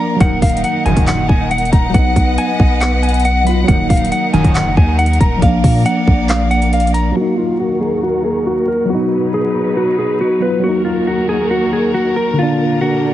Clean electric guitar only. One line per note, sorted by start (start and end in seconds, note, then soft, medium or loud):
0.00 0.19 A#5 medium
0.21 0.41 F#5 medium
0.42 0.62 F5 medium
0.64 0.84 F#5 medium
0.86 1.06 G#5 medium
1.08 1.28 F#5 medium
1.29 1.49 G#5 medium
1.51 1.71 F#5 medium
1.72 1.93 A#5 medium
1.94 2.35 F#5 medium
2.38 2.79 G#5 medium
2.81 3.01 F#5 medium
3.03 3.23 G#5 medium
3.25 3.45 F#5 medium
3.47 3.67 B5 medium
3.68 3.88 F#5 medium
3.89 4.10 F5 medium
4.12 4.32 F#5 medium
4.33 4.54 G#5 medium
4.55 4.75 F#5 medium
4.77 4.97 G#5 medium
4.99 5.19 F#5 medium
5.21 5.41 A#5 medium
5.43 5.84 F5 medium
5.86 6.27 F#5 medium
6.30 6.50 F5 medium
6.51 6.71 F#5 medium
6.73 6.93 F5 medium
6.94 7.14 A#5 medium
7.17 7.37 F#4 medium
7.38 7.58 F4 medium
7.60 7.80 F#4 medium
7.81 8.01 G#4 medium
8.03 8.23 F#4 medium
8.24 8.45 G#4 medium
8.47 8.67 F#4 medium
8.68 8.88 A#4 medium
8.90 9.31 F#4 medium
9.34 9.75 G#4 medium
9.77 9.97 F#4 medium
9.98 10.19 G#4 medium
10.21 10.41 F#4 medium
10.42 10.62 B4 medium
10.64 10.84 F#4 medium
10.85 11.05 F4 medium
11.07 11.28 F#4 medium
11.29 11.49 G#4 medium
11.51 11.71 F#4 medium
11.73 11.93 G#4 medium
11.94 12.15 F#4 medium
12.16 12.36 A#4 medium
12.39 12.79 F4 medium
12.81 13.14 F#4 medium